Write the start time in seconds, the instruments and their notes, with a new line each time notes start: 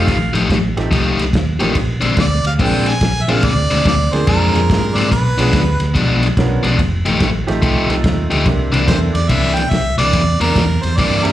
Already playing: overdriven electric guitar F3 A3 D#4 G4, harmonica F5
0.08 fingered electric bass A1, kick, snare, ride
0.33 fingered electric bass A1, overdriven electric guitar F3 A3 D#4 G4, snare, ride
0.50 fingered electric bass A1, kick, snare, ride
0.76 fingered electric bass A1, grand piano A3 C4 D#4 F4 G4, snare, ride
0.91 fingered electric bass C2, overdriven electric guitar F3 A3 D#4 G4, kick, snare, ride
1.18 fingered electric bass C2, snare, ride
1.33 fingered electric bass D#2, kick, snare, ride
1.60 fingered electric bass A1, overdriven electric guitar F3 A3 D#4 G4, grand piano A#3 C4 D4 F4 G4, snare, ride
1.75 fingered electric bass A#1, kick, snare, ride
2.01 fingered electric bass A#1, overdriven electric guitar A#2 G#3 C4 D4, snare, ride
2.17 fingered electric bass D2, harmonica D5, kick, snare, ride
2.43 fingered electric bass D2, harmonica F5, snare, ride
2.59 fingered electric bass A#1, overdriven electric guitar A#2 G#3 C4 D4, grand piano A#3 C4 D4 F4 G#4, kick, snare, ride
2.63 harmonica G5
2.86 harmonica G#5, snare, ride
3.01 fingered electric bass A#1, kick, snare, ride
3.23 harmonica E5
3.28 fingered electric bass A#1, overdriven electric guitar A#2 G#3 C4 D4, grand piano A#3 C4 D4 F4 G#4, harmonica F5, snare, ride
3.43 fingered electric bass D2, harmonica D5, kick, snare, ride
3.70 fingered electric bass D2, overdriven electric guitar A#2 G#3 C4 D4, snare, ride
3.85 fingered electric bass D2, harmonica D5, kick, snare, ride
4.12 fingered electric bass D2, grand piano A#3 C4 D4 F4 G#4, harmonica C5, snare, ride
4.27 fingered electric bass F2, overdriven electric guitar A#2 G#3 C4 D4, harmonica A#4, kick, snare, ride
4.53 fingered electric bass F2, grand piano A#3 C4 D4 F4 G#4, snare, ride
4.70 fingered electric bass G#2, kick, snare, ride
4.95 fingered electric bass G#2, overdriven electric guitar A#2 G#3 C4 D4, harmonica D5, ride
5.00 snare
5.11 fingered electric bass B1, harmonica B4, kick, snare, ride
5.37 fingered electric bass B1, overdriven electric guitar B2 F3 G#3 D4, grand piano B3 C#4 D4 F4 G#4, snare, ride
5.53 fingered electric bass D2, kick, snare, ride
5.80 fingered electric bass D2, snare, ride
5.94 fingered electric bass B1, overdriven electric guitar B2 F3 G#3 D4, kick, snare, ride
6.23 snare, ride
6.37 fingered electric bass B1, grand piano B3 C#4 D4 F4 A#4, kick, snare, ride
6.63 fingered electric bass B1, overdriven electric guitar B2 F3 G#3 D4, snare, ride
6.79 fingered electric bass F1, kick, snare, ride
7.05 fingered electric bass A1, overdriven electric guitar F3 A3 D#4 G4, snare, ride
7.20 fingered electric bass A1, kick, snare, ride
7.47 fingered electric bass A1, grand piano A3 C4 D#4 F4 G4, snare, ride
7.62 fingered electric bass C2, overdriven electric guitar F3 A3 D#4 G4, kick, snare, ride
7.89 fingered electric bass C2, grand piano A3 C4 D#4 F4 A4, snare, ride
8.04 fingered electric bass D#2, kick, snare, ride
8.30 fingered electric bass D2, overdriven electric guitar F3 A3 D#4 G4, snare, ride
8.46 fingered electric bass C2, grand piano A#3 C4 D4 E4 G4, kick, snare, ride
8.72 fingered electric bass C2, overdriven electric guitar C3 E3 A#3 D4, snare, ride
8.87 fingered electric bass E2, grand piano A#3 C4 D4 E4 A4, harmonica C5, kick, snare, ride
9.14 fingered electric bass E2, harmonica D5, snare, ride
9.29 fingered electric bass C2, overdriven electric guitar C3 E3 A#3 D4, harmonica E5, kick, snare, ride
9.55 harmonica G5, snare, ride
9.70 fingered electric bass C2, harmonica E5, kick, snare, ride
9.98 fingered electric bass C2, overdriven electric guitar C3 E3 A#3 D4, harmonica D5, snare, ride
10.13 fingered electric bass E2, kick, snare, ride
10.40 fingered electric bass E2, overdriven electric guitar C3 E3 A#3 D4, harmonica A#4, snare, ride
10.55 fingered electric bass E2, kick, snare, ride
10.82 fingered electric bass E2, harmonica C5, snare, ride
10.97 fingered electric bass G2, overdriven electric guitar C3 E3 A#3 D4, harmonica D5, kick, snare, ride
11.23 fingered electric bass G2, grand piano A#3 C4 D4 E4 G4, harmonica A#4, snare, ride